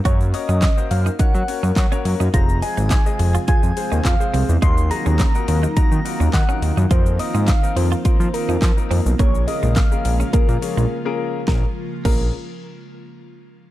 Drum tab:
CC |----------------|----------------|----------------|----------------|
HH |x-o-x-o-x-o-x-o-|x-o-x-o-x-o-x-o-|x-o-x-o-x-o-x-o-|x-o-x-o-x-o-x-o-|
SH |xxxxxxxxxxxxxxxx|xxxxxxxxxxxxxxxx|xxxxxxxxxxxxxxxx|xxxxxxxxxxxxxxxx|
CP |----x-------x---|----x-------x---|----x-------x---|----x-------x---|
SD |----o-------o---|----o-------o---|----o-------o---|----o-------o---|
BD |o---o---o---o---|o---o---o---o---|o---o---o---o---|o---o---o---o---|

CC |----------------|----x-----------|
HH |x-o-x-o-x-o-----|----------------|
SH |xxxxxxxxxxxx----|----------------|
CP |----x-----------|----------------|
SD |----o-----------|o---------------|
BD |o---o---o-------|o---o-----------|